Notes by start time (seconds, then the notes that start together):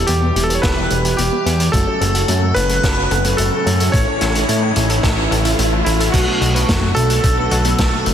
Already playing: B2 E3 G3 E4 G4, riser
0.07 E2 E3 B3 E4 G4, closed hi-hat
0.22 B3
0.36 E1 E3 B3 E4 G4, closed hi-hat
0.43 A4
0.50 B4, closed hi-hat
0.55 C#5
0.62 E1 E3 B3 E4 G4 B4, kick, snare, closed hi-hat
0.77 E3 B3 E4 A4 E5
0.90 E1 B4, closed hi-hat
1.05 E3 B3 E4 G4 G5, closed hi-hat
1.17 E1 E3 B3 E4 G4, closed hi-hat
1.32 B3
1.46 E2 B3 E4 G4, closed hi-hat
1.60 B4, closed hi-hat
1.72 F#1 A2 C#3 F#3 A3 C#4 F#4 A4, kick, closed hi-hat
1.87 F#3 C#4 F#4 A4 C#5
2.01 F#1 A4, closed hi-hat
2.15 F#3 C#4 F#4 A4 F#5, closed hi-hat
2.28 F#2 F#3 A3 C#4 F#4 A4, closed hi-hat
2.42 A3
2.54 F#1 F#3 A3 C#4 F#4 A4 B4, closed hi-hat
2.69 A4, closed hi-hat
2.83 F#3 A3 C#4 F#4 A4, kick, snare, closed hi-hat
2.97 F#3 C#4 F#4 B4 C#5
3.11 F#1 A4, closed hi-hat
3.24 F#3 C#4 F#4 A4 F#5, closed hi-hat
3.37 F#1 F#3 A3 F#4 A4, closed hi-hat
3.52 A3
3.66 F#2 A2 A3 C#4 F#4 A4, closed hi-hat
3.80 A4, closed hi-hat
3.92 A1 A2 E3 A3 C#4 E4 A4 C#5, kick, closed hi-hat
4.07 A2 C#4 E4 A4 C#5
4.21 A1 A4, snare, closed hi-hat
4.35 A2 C#4 E4 A4 E5, closed hi-hat
4.49 A2 A3 C#4 E4 A4, closed hi-hat
4.62 A3
4.76 A1 A2 A3 C#4 E4 A4, closed hi-hat
4.90 A4, closed hi-hat
5.03 A1 A2 A3 C#4 E4, kick, snare, closed hi-hat
5.17 A2 C#4 E4 B4 C#5
5.31 A1 A4, closed hi-hat
5.45 A2 C#4 E4 A4 E5, closed hi-hat
5.59 A1 A2 A3 C#4 A4, closed hi-hat
5.72 A3
5.85 A1 A3 C#4 E4 A4, closed hi-hat
6.00 A4, closed hi-hat
6.12 B1 B2 D3 F#3 A3 B3 D4 F#4 A4, kick, closed hi-hat, crash
6.27 B2 F#3 A3 B3 D4 A4
6.41 B1 F#4, closed hi-hat
6.55 B2 F#3 A3 B3 D4 A4 B4, closed hi-hat
6.69 F#1 B2 F#3 A3 B3 D4 A4, kick, snare, closed hi-hat
6.82 A3
6.95 B1 B2 F#3 A3 B3 D4 A4, closed hi-hat
7.10 F#4, closed hi-hat
7.24 B1 B2 F#3 A3 B3 D4 A4, kick, closed hi-hat
7.37 B2 F#3 A3 B3 D4 A4 B4
7.51 B1 F#4, closed hi-hat
7.65 B2 F#3 A3 B3 D4 A4 B4, closed hi-hat
7.78 B1 B2 F#3 A3 B3 D4 A4, kick, snare, closed hi-hat
7.92 A3
8.06 F#1 F#3 A3 B3 D4 A4, closed hi-hat